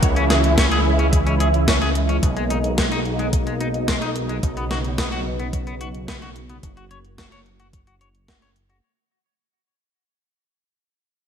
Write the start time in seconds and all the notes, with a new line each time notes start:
0.03 C#2 C#3 E3 G#3 E4, kick, closed hi-hat
0.16 C#4, closed hi-hat
0.30 G#4, snare, closed hi-hat
0.44 closed hi-hat
0.58 C#4, kick, snare, closed hi-hat
0.72 G#4, closed hi-hat
0.99 C#4, closed hi-hat
1.13 kick, closed hi-hat
1.27 C#4, closed hi-hat
1.40 G#4, closed hi-hat
1.54 closed hi-hat
1.68 C#4, kick, snare, closed hi-hat
1.82 G#4, closed hi-hat
1.95 closed hi-hat
2.09 C#4, closed hi-hat
2.23 B1 B2 A#3 D#4, kick, closed hi-hat
2.37 G#3, closed hi-hat
2.50 D#4, closed hi-hat
2.64 closed hi-hat
2.78 G#3, kick, snare, closed hi-hat
2.92 D#4, closed hi-hat
3.06 closed hi-hat
3.19 G#3, closed hi-hat
3.33 kick, closed hi-hat
3.47 G#3, closed hi-hat
3.61 D#4, closed hi-hat
3.74 closed hi-hat
3.88 G#3, kick, snare, closed hi-hat
4.02 D#4, closed hi-hat
4.16 closed hi-hat
4.29 G#3, closed hi-hat
4.43 B1 C#3 F#3 B3, kick, closed hi-hat
4.57 B3, closed hi-hat
4.71 F#4, snare, closed hi-hat
4.84 closed hi-hat
4.98 B3, kick, snare, closed hi-hat
5.12 F#4, closed hi-hat
5.39 B3, closed hi-hat
5.53 kick, closed hi-hat
5.67 B3, closed hi-hat
5.81 F#4, closed hi-hat
5.95 closed hi-hat
6.08 B3, kick, snare, closed hi-hat
6.22 F#4, closed hi-hat
6.36 closed hi-hat
6.49 B3, closed hi-hat
6.63 F#1 A#3 F#4, kick, closed hi-hat
6.77 F#4, closed hi-hat
6.91 C#5, closed hi-hat
7.05 closed hi-hat
7.18 F#4, kick, snare, closed hi-hat
7.32 C#5, closed hi-hat
7.46 closed hi-hat
7.60 F#4, closed hi-hat
7.73 kick, closed hi-hat
7.87 F#4, closed hi-hat
8.01 C#5, closed hi-hat
8.15 closed hi-hat
8.28 F#4, kick, snare, closed hi-hat
8.42 C#5, closed hi-hat
8.56 closed hi-hat
8.70 F#4, closed hi-hat